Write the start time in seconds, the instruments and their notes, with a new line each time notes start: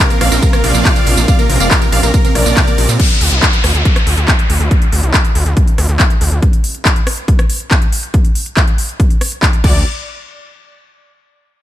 Already playing: analog synth pad C3 F3 A#3 F4
0.10 synth pluck A#3, supersaw synth A#4, grand piano A#4, closed hi-hat, tambourine
0.21 analog synth bass A#1, synth pluck C3, supersaw synth D5 F5, grand piano F5, cross-stick, open hi-hat, ride
0.32 analog synth bass A#1, synth pluck C4, supersaw synth A#4, grand piano A#4, closed hi-hat, tambourine
0.42 synth pluck C3, supersaw synth A#4, grand piano A#4, kick, closed hi-hat, tambourine
0.53 synth pluck A#3, supersaw synth A#4, grand piano A#4, cross-stick, closed hi-hat, tambourine
0.64 analog synth bass A#1, synth pluck C3, supersaw synth D5 F5, grand piano F5, open hi-hat, ride
0.75 analog synth bass A#1, synth pluck A#3, tambourine
0.85 synth pluck C3, kick, clap, closed hi-hat, tambourine
0.96 synth pluck C4, closed hi-hat, tambourine
1.07 analog synth bass A#1, synth pluck C3, open hi-hat, ride
1.17 analog synth bass A#1, synth pluck A#3, closed hi-hat, tambourine
1.28 synth pluck C3, supersaw synth D5 F5, grand piano F5, kick, closed hi-hat, tambourine
1.39 synth pluck A#3, supersaw synth A#4, grand piano A#4, closed hi-hat, tambourine
1.49 analog synth bass A#1, synth pluck C3, supersaw synth A#4, grand piano A#4, open hi-hat, ride
1.60 analog synth bass F1, synth pluck C4, supersaw synth D5 F5, grand piano F5, closed hi-hat, tambourine
1.71 synth pluck C3, supersaw synth A#4, grand piano A#4, kick, clap, closed hi-hat, tambourine
1.82 synth pluck A#3, supersaw synth A#4, grand piano A#4, closed hi-hat, tambourine
1.92 analog synth bass A#1, synth pluck C3, supersaw synth D5 F5, grand piano F5, open hi-hat, ride
2.03 analog synth bass A#1, synth pluck A#3, supersaw synth A#4, grand piano A#4, closed hi-hat, tambourine
2.14 synth pluck C3, supersaw synth A#4, kick, closed hi-hat, tambourine
2.25 synth pluck C4, supersaw synth A#4, grand piano A#4, closed hi-hat, tambourine
2.35 analog synth bass A#1, synth pluck C3, supersaw synth A#4 D5, grand piano D5, cross-stick, open hi-hat, ride
2.46 analog synth bass A#1, synth pluck A#3, closed hi-hat, tambourine
2.57 synth pluck C3, kick, clap, closed hi-hat, tambourine
2.67 synth pluck A#3, closed hi-hat, tambourine
2.78 analog synth bass A#1, synth pluck C3, open hi-hat, ride
2.89 analog synth bass A#2, synth pluck C4, closed hi-hat, tambourine
3.00 kick, closed hi-hat, crash, downlifter
3.10 closed hi-hat
3.21 analog synth bass D2, open hi-hat
3.32 analog synth bass C2, closed hi-hat
3.43 kick, clap, closed hi-hat
3.53 closed hi-hat
3.64 analog synth bass D2, cross-stick, open hi-hat
3.75 analog synth bass D2, closed hi-hat
3.85 kick, closed hi-hat
3.96 cross-stick, closed hi-hat
4.07 analog synth bass D2, open hi-hat
4.17 analog synth bass D2, closed hi-hat
4.28 kick, clap, closed hi-hat
4.39 closed hi-hat
4.50 analog synth bass D2, open hi-hat
4.60 analog synth bass D2, closed hi-hat
4.71 kick, closed hi-hat
4.82 closed hi-hat
4.92 analog synth bass D2, open hi-hat
5.03 analog synth bass C2, closed hi-hat
5.14 kick, clap, closed hi-hat
5.25 closed hi-hat
5.35 analog synth bass D2, open hi-hat
5.46 analog synth bass D2, closed hi-hat
5.57 kick, closed hi-hat
5.67 closed hi-hat
5.78 analog synth bass D2, cross-stick, open hi-hat
5.89 analog synth bass D2, closed hi-hat
6.00 kick, clap, closed hi-hat
6.10 closed hi-hat
6.21 analog synth bass D2, open hi-hat
6.32 analog synth bass D2, closed hi-hat
6.42 kick, closed hi-hat
6.53 closed hi-hat
6.64 open hi-hat
6.75 closed hi-hat
6.85 kick, clap, closed hi-hat
6.96 closed hi-hat
7.07 cross-stick, open hi-hat
7.17 closed hi-hat
7.28 kick, closed hi-hat
7.39 cross-stick, closed hi-hat
7.50 open hi-hat
7.60 closed hi-hat
7.71 kick, clap, closed hi-hat
7.82 closed hi-hat
7.92 open hi-hat
8.03 closed hi-hat
8.14 kick, closed hi-hat
8.25 closed hi-hat
8.35 open hi-hat
8.46 closed hi-hat
8.57 kick, clap, closed hi-hat
8.68 closed hi-hat
8.78 open hi-hat
8.89 closed hi-hat
9.00 kick, closed hi-hat
9.10 closed hi-hat
9.21 cross-stick, open hi-hat
9.32 closed hi-hat
9.43 kick, clap, closed hi-hat
9.53 closed hi-hat
9.64 analog synth bass D2, supersaw synth D5, kick, crash